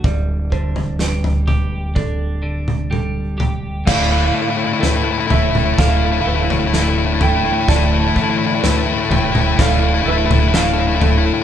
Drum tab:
CC |----------------|x---------------|----------------|
SD |----o-----------|o---o---o---o---|o---o---o---o---|
T2 |------o----oo-o-|------ooo-------|------ooo--o----|
FT |o--o-oo-o-----o-|o---o-o-o--o--o-|o---o-o-o--o--o-|
BD |o-o-----o-------|o-------o-------|o-o-----o-------|